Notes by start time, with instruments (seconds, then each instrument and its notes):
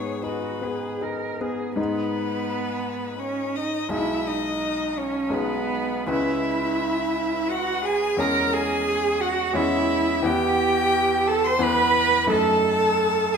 Already playing: grand piano G#2 B3 G#4, cello G#4, violin C#5
0.23 grand piano D#4 G#4, cello F#4, violin B4
0.62 grand piano B3 G#4, cello G#4
1.01 grand piano D#4 G#4, cello A#4
1.41 grand piano B3 G#4, cello G#4
1.76 grand piano G#2 G#3 D#4 G#4, cello B3, violin B4
3.19 cello C#4, violin C#5
3.56 cello D#4, violin D#5
3.89 grand piano B1 G#3 D#4 G#4, cello E4, violin E5
4.26 cello D#4, violin D#5
4.98 cello C#4, violin C#5
5.30 grand piano B1 G#3 D#4 G#4, violin B4
5.34 cello B3
6.07 grand piano C#2 G#3 C#4 B4, cello E4, violin E5
7.50 cello F#4, violin F#5
7.84 cello G#4, violin G#5
8.17 grand piano E2 G#3 C#4 C#5, cello A#4, violin A#5
8.53 cello G#4, violin G#5
9.21 cello F#4, violin F#5
9.53 grand piano E2 G#3 C#4 C#5, cello E4, violin E5
10.23 grand piano E2 B3 E4 B4, cello G4, violin G5
11.27 cello A4, violin A5
11.44 cello C5, violin C6
11.59 grand piano E2 B3 E4 B4, violin B5
11.63 cello B4
12.27 grand piano F#2 A3 D#4 D#5, cello A4, violin A5
13.34 violin G#5